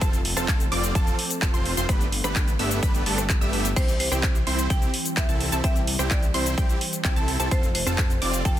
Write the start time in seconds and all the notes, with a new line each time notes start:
0.01 F1 F3 A3 C4 F4 A4 A5, kick, cross-stick, closed hi-hat, shaker
0.13 closed hi-hat, shaker
0.25 open hi-hat
0.37 F1 C4 F4 A4 A5, cross-stick, shaker
0.48 kick, clap, closed hi-hat, shaker
0.60 closed hi-hat, shaker
0.72 F1 C4 F4 D5 D6, open hi-hat
0.84 closed hi-hat, shaker
0.95 F1 C4 F4 A4 A5, kick, closed hi-hat, shaker
1.07 closed hi-hat, shaker
1.19 open hi-hat
1.30 closed hi-hat, shaker
1.42 F1 C4 F4 A4 A5, kick, clap, closed hi-hat, shaker
1.54 F1 C4 F4 C5 C6, closed hi-hat, shaker
1.66 open hi-hat
1.77 F1 C4 F4 C5 C6, closed hi-hat, shaker
1.89 G1 G3 A3 B3 D4 G4 B5, kick, cross-stick, closed hi-hat, shaker
2.01 closed hi-hat, shaker
2.12 open hi-hat
2.24 G1 A3 B3 D4 G4 B4 B5, cross-stick, closed hi-hat, shaker
2.36 kick, clap, closed hi-hat, shaker
2.48 closed hi-hat, shaker
2.59 G1 A3 B3 D4 G4 E5 E6, open hi-hat
2.71 closed hi-hat, shaker
2.83 G1 B5, kick, closed hi-hat, shaker
2.94 closed hi-hat, shaker
3.06 G1 A3 B3 D4 G4 A4 A5, open hi-hat
3.18 cross-stick, shaker
3.30 kick, clap, closed hi-hat, shaker
3.41 G1 A3 B3 D4 G4 E5 E6, closed hi-hat, shaker
3.53 open hi-hat
3.65 closed hi-hat, shaker
3.76 C2 E3 C4 E4 G4 C5 G5, kick, cross-stick, closed hi-hat, crash, shaker
3.88 closed hi-hat, shaker
4.00 C5, open hi-hat
4.12 C2 C4 E4 G4 G5, cross-stick, closed hi-hat, shaker
4.23 kick, clap, closed hi-hat, shaker
4.35 closed hi-hat, shaker
4.47 C2 C4 E4 C5 C6, open hi-hat
4.59 closed hi-hat, shaker
4.70 C2 C4 E4 G4 G5, kick, closed hi-hat, shaker
4.82 closed hi-hat, shaker
4.94 open hi-hat
5.05 closed hi-hat, shaker
5.17 C2 C4 E4 G4 E5 G5, kick, clap, closed hi-hat, shaker
5.29 C2 C4 E4 A4 A5, closed hi-hat, shaker
5.40 open hi-hat
5.52 C2 C4 E4 A4 A5, closed hi-hat, shaker
5.64 C2 C4 G4 E5 G5, kick, cross-stick, closed hi-hat, shaker
5.76 closed hi-hat, shaker
5.87 open hi-hat
5.99 C2 C4 E4 G4 G5, cross-stick, shaker
6.11 D5, kick, clap, closed hi-hat, shaker
6.23 closed hi-hat, shaker
6.34 C2 C4 E4 C5 C6, open hi-hat
6.46 closed hi-hat, shaker
6.58 C2 C4 E4 G4 G5, kick, closed hi-hat, shaker
6.69 closed hi-hat, shaker
6.81 open hi-hat
6.93 closed hi-hat, shaker
7.04 C2 C4 E4 G4 G5, kick, clap, closed hi-hat, shaker
7.16 C2 C4 E4 A4 A5, closed hi-hat, shaker
7.28 open hi-hat
7.40 C2 C4 E4 A4 A5, closed hi-hat, shaker
7.51 F1 F3 A3 C4 F4 A4 C5 A5, kick, cross-stick, closed hi-hat, shaker
7.63 closed hi-hat, shaker
7.75 C5, open hi-hat
7.87 F1 C4 F4 A4 A5, cross-stick, shaker
7.98 kick, clap, closed hi-hat, shaker
8.10 closed hi-hat, shaker
8.22 F1 C4 F4 D5 D6, open hi-hat
8.33 closed hi-hat, shaker
8.45 F1 G5 A5, kick, closed hi-hat, shaker